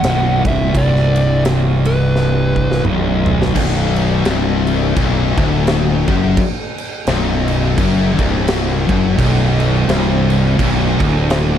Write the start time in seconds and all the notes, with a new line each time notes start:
Already playing: F#5
0.03 B0 B1, snare, ride
0.45 C1 C2 E5, kick, ride
0.75 C1 C2 D5, kick, ride
0.96 snare
1.16 ride
1.45 snare, ride
1.85 B4, ride
2.16 snare
2.56 kick
2.72 snare
2.85 B0 B1, mid tom
3.26 floor tom
3.42 snare
3.56 B0 B1, kick, crash
3.96 crash
4.25 C1 C2, snare, crash
4.67 crash
4.97 B0 B1, kick, crash
5.37 D1 D2, kick, crash
5.67 snare, crash
6.07 F#1 F#2, kick, crash
6.37 kick, crash
6.78 crash
7.07 B0 B1, snare, crash
7.48 crash
7.77 F#1 F#2, kick, crash
8.18 C1 C2, kick, crash
8.48 snare, crash
8.88 F#1 F#2, kick, crash
9.17 B0 B1, kick, crash
9.60 crash
9.88 C1 C2, snare, crash
10.30 crash
10.58 B0 B1, kick, crash
10.99 D1 D2, kick, crash
11.30 snare, crash